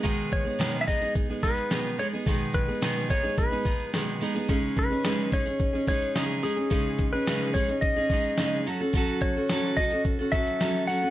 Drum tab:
SH |x-x-x-xxx-xxx-x-|x-x-x-xxx-xxx-xx|x-x-x-xxx-xxx-x-|x-x-x-xxx-xxx-x-|
SD |----o-------o---|----o-------o---|----o-------o---|----o-------o---|
BD |o-o---o-o-o-----|o-o---o-o-o-----|o-o---o-o-o-----|o-o---o-o-o-----|

SH |x-x-x-xxx-xxx-x-|
SD |----o-------o---|
BD |o-o---o-o-o-----|